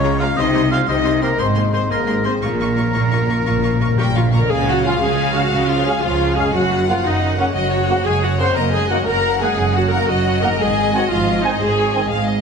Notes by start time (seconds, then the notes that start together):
Already playing: C#2 C#3 F3 G#3 C#4 F4 G#4 C#5
0.04 G#3 F4 A#4 A#5
0.20 G#3 F4 F5 A#5
0.37 C2 C3 C4 D#4 G4 D#5 C6
0.55 G3 C4 G4 C6
0.70 C4 F4 G4 F5 C6
0.88 C2 C3 C4 D#4 G4 D#5 C6
1.05 C4 G4 C6
1.22 A#3 C4 G4 A#4 C6
1.39 G#1 G#2 A#3 C4 G#4 C5 C6
1.56 D#3 A#3 G#4 C6
1.73 A#3 C4 G#4 C5 C6
1.90 G#1 G#2 A#3 G#4 A#4 C6
2.07 A#3 G#4 A#4 C6
2.25 A#3 C4 G#4 C5 C6
2.42 A#1 A#2 A#3 F4 A#4 C#6
2.51 A#2
2.59 A#2 F3 A#3 F4 C#6
2.74 A#2 C#4 C#6
2.78 A#2 A#3 F4
2.89 A#2
2.94 A#1 A#2 A#3 F4 C#6
3.05 A#2
3.12 A#2 A#3 F4 C#6
3.20 A#2
3.27 A#2 A#3 F4 C#6
3.35 A#2
3.43 A#2
3.47 A#1 A#2 A#3 F4 C#6
3.58 A#2
3.63 A#2 F3 A#3 F4 C#6
3.73 A#2
3.80 A#2 A#3 C#4 F4 C#6
3.88 A#2
3.96 A#2 G3 A#3 F4 G4 G5 C#6
4.00 A#1
4.04 A#2
4.12 A#2 F3 A#4 F5 C#6
4.16 A#2 A#3 F4
4.28 A#2
4.32 A#2 C#3 A#3 F4 A#4 A#5 C#6
4.37 C#4
4.42 A#2 G#4
4.50 C#2 C#3 G#3 G#4 F5 G#5
4.67 F#3 F#4 F#5
4.85 C#3 F3 C#4 F4 F5
5.02 C#2 C#3 G#3 G#4 G#5
5.35 C#3 G#3 C#4 F#4 F5 F#5
5.52 C#2 C#3
5.69 F3 F4 F5
5.86 C#3 G#3 C#4 G#4 F5 G#5
6.03 C#2 C#3 F3 F4 F5
6.36 F#2 C#3 G#3 C#4 G#4 F5 G#5
6.40 C#4
6.45 F#4
6.49 A#4
6.54 F#1 F#2 F#3 F#4 F#5
6.87 C#3 F3 A#3 F4 F5 F#5
7.04 F#1 F#2 D#3 D#4 D#5
7.37 C#3 A#3 C#4 C#5 F#5
7.54 F#1 F#2 F#3 F#4 D#5 F#5
7.72 C#5
7.88 C#3 A#3 C5 F#5
8.04 F#1 F#2 G#3 G#4 C#5 G#5
8.22 F#3 F#4 F#5
8.37 F#2 C#3 A#3 C4 C5 F#5 C6
8.42 A#3
8.47 D#4
8.51 A#4
8.56 F#1 F#2 A#3 A#4 D#5 A#5
8.72 G#3 G#4 G#5
8.89 D#3 F#3 A#3 F#4 F#5
9.06 F#1 F#2 A#3 A#4 F#5 A#5
9.40 D#3 G#3 A#3 G#4 F#5 G#5
9.58 F#1 F#2
9.76 F#3 F#4 F#5
9.91 D#3 A#3 A#4 F#5 A#5
10.08 F#1 F#2 F#3 F#4 D#5 F#5
10.41 G#2 D#3 A#3 A#4 F#5 A#5
10.46 C4
10.51 D#4
10.55 G#2 G#3 D#5
10.60 G#1 G#4 G#5
10.92 D#3 F#3 C4 F#4 F#5 G#5
11.10 G#1 G#2 F3 F4 F5
11.43 D#3 C4 D#4 D#5 G#5
11.60 G#1 G#2 G#3 G#4 C5 G#5
11.77 C#5
11.94 D#3 C4 D#5 G#5
12.10 G#1 G#2 F5
12.27 D#5